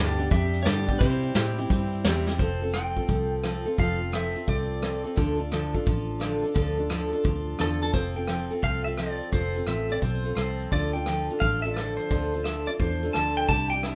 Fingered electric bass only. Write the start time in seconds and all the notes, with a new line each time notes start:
Already playing: D2
0.31 F2
0.66 G2
1.01 C3
1.35 A2
1.70 G2
2.04 E2
2.39 F1
3.09 C2
3.78 F1
4.48 C2
5.17 D2
5.87 A1
6.56 D2
7.25 D2
7.60 E2
7.94 F1
8.63 C2
9.32 F1
9.67 A1
10.02 B1
10.36 C2
10.72 D2
11.42 A1
12.11 D2
12.79 E2
13.15 D2
13.48 C2